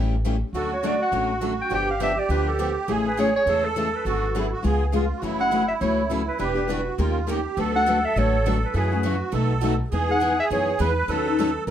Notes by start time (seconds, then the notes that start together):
Already playing: A1 C#3 E3 G3 A3 C#4 E4 G4 A4
0.25 C#3 E3 G3 A3 C#4 E4 G4 A4
0.53 D2 D3 F#3 A3 C#4 F#4 A4
0.73 C#5
0.83 D3 F#3 A3 C#4 F#4 A4 D5
1.02 F#5
1.12 A1 D3 F#3 A3 C#4 F#4 A4
1.41 D3 F#3 A3 C#4 F#4 A4
1.62 G5
1.70 G1 D3 F3 B3 D4 G4
1.75 G5
1.91 F5
2.01 D3 F3 B3 D4 G4 E5
2.19 D5
2.29 D2 D3 F3 B3 D4 G4 B4
2.48 A4
2.58 D3 F3 B3 D4 G4
2.88 A1 C#3 E3 G#3 A3 C#4 E4 G#4 A4
3.07 B4
3.18 C#3 E3 G#3 A3 C#4 E4 G#4 A4 C#5
3.36 C#5
3.46 E2 C#3 E3 G#3 A3 C#4 E4 G#4 A4
3.65 A4
3.76 C#3 E3 G#3 A3 C#4 E4 G#4 A4
3.95 B4
4.05 G#1 D3 F#3 B3 F#4 G#4 A4
4.35 D3 F#3 B3 E4 F#4 G#4
4.52 F#4
4.62 C#2 C#3 G#3 B3 F4 G#4
4.92 C#3 G#3 B3 F4 G#4
5.17 F#4
5.22 F#1 C#3 E3 F#3 A3 C#4 E4 F#4 A4
5.39 A3 C#4 F#4 F#5
5.51 C#3 E3 F#3 A3 C#4 E4 F#4 A4
5.68 E5
5.81 C#2 C#3 E3 F#3 A3 C#4 E4 F#4 A4 C#5
6.10 C#3 E3 F#3 A3 C#4 E4 F#4 A4
6.28 B4
6.38 E1 E3 G3 B3 D4 E4 G4 B4
6.55 B3 D4 G4
6.68 E3 G3 B3 D4 E4 F#4 G4 B4
6.98 D#2 D#3 A#3 C#4 F4 G4 A#4
7.27 D#3 A#3 C#4 G4 A#4
7.57 D2 D3 F#3 A3 B3 D4 F#4 A4 B4
7.74 A3 D4 F#4 B4 F#5
7.87 D3 F#3 A3 B3 D4 F#4 A4 B4
8.05 E5
8.16 A1 D3 F#3 A3 B3 D4 F#4 A4 B4 C#5
8.46 D3 F#3 A3 B3 D4 F#4 A4 B4
8.65 B4
8.74 F#2 C#3 E3 F#3 A3 C#4 E4 F#4 G#4 A4 B4
8.92 A3 C#4 F#4
9.03 C#3 E3 F#3 A3 C#4 E4 F#4 A4
9.32 B1 B2 F#3 A3 D#4 F#4 A4 B4
9.62 B2 F#3 A3 D#4 F#4 B4
9.92 E2 E3 G#3 B3 D#4 G#4
10.09 B3 D#4 G#4 F#5
10.21 E3 G#3 B3 D#4 G#4
10.40 E5
10.51 F#2 E3 G#3 B3 D#4 G#4 C#5
10.79 E2 E3 G#3 B3 D#4 G#4 B4
10.98 B4
11.08 D#2 D#3 F#3 C#4 D#4 A4 B4
11.26 C#4 D#4 A4
11.39 D#3 F#3 C#4 D#4 A4
11.67 G#1 D#3 F#3 A#4